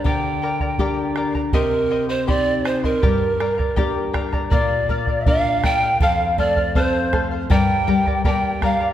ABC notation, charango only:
X:1
M:2/4
L:1/16
Q:1/4=80
K:Gm
V:1 name="Charango"
[GBdgb]2 [Bdgb] [Bdb] [GBdgb]2 [Bdgb] [Bdb] | [Gcegc']2 [cegc'] [cec'] [Gcgc']2 [cegc'] [cec'] | [GBdgb]2 [Bdgb] [Bdb] [GBdgb]2 [Bdgb] [Bdb] | [Bdf]2 [Bdf] [df] [Bdf]2 [Bdf] [df] |
[Acf]2 [Acf] [cf] [Acf]2 [Acf] [cf] | [GBdgb]2 [Bdgb] [Bdb] [GBdgb]2 [Bdgb] [Bdb] |]